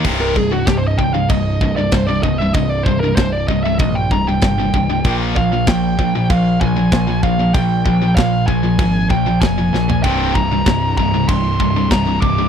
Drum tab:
CC |x---x---x---x---|x---x---x---x---|x---x---x---x---|x---x---x---x---|
SD |----o-------o---|----o-------o---|----o-------o---|----o-------o-o-|
FT |----------------|----------------|----------------|---------------o|
BD |o-o-o-o-o-o-o-o-|o-o-o-o-o-o-o-o-|o-o-o-o-o-o-o-o-|o-o-o-o-o-o-o---|

CC |x---x---x---x---|
SD |----o-------o---|
FT |----------------|
BD |o-o-o-o-o-o-o-o-|